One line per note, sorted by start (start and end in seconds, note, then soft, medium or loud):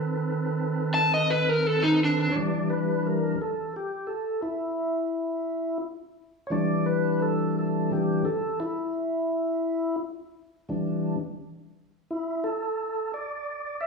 0.00 2.28 D#3 medium
0.00 2.29 C4 medium
0.00 2.29 A4 medium
0.00 2.29 B4 medium
0.94 1.11 A5 medium
1.14 1.29 D#5 medium
1.30 1.49 B4 medium
1.49 1.67 A#4 medium
1.67 1.82 A4 medium
1.83 1.99 D#4 medium
2.04 2.35 D4 loud
2.32 3.35 E3 soft
2.32 2.35 C#5 medium
2.36 3.35 G3 soft
2.36 3.36 D4 medium
2.36 2.68 D5 medium
2.70 3.03 B4 medium
3.06 3.39 A#4 medium
3.42 3.74 A4 medium
3.76 4.08 G4 medium
4.07 4.41 A4 medium
4.42 5.78 E4 medium
6.47 7.91 E3 soft
6.47 6.51 C#5 medium
6.51 7.90 G3 soft
6.51 7.91 D4 medium
6.51 6.86 D5 medium
6.86 7.20 B4 medium
7.22 7.56 A4 medium
7.59 7.92 A4 medium
7.91 8.23 E3 soft
7.91 8.23 G3 soft
7.91 8.23 D4 medium
7.91 8.26 G4 medium
8.25 8.59 A4 medium
8.60 9.96 E4 loud
10.69 11.16 E3 soft
10.69 11.16 G3 soft
10.69 11.16 D4 medium
12.11 12.44 E4 medium
12.44 13.12 A4 medium
13.14 13.82 D5 medium
13.81 13.87 E5 medium